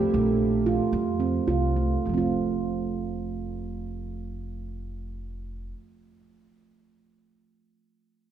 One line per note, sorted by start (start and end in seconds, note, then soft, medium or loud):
0.14 0.79 A#1 medium
0.14 0.41 A3 medium
0.66 0.94 F4 medium
0.93 1.38 F2 medium
1.20 1.34 C4 medium
1.47 1.95 C2 medium
1.47 1.63 F4 medium
1.76 1.92 A3 soft
2.06 5.72 F1 medium
2.06 5.71 F3 soft
2.06 5.75 A3 soft
2.14 5.79 C4 soft
2.18 5.83 F4 soft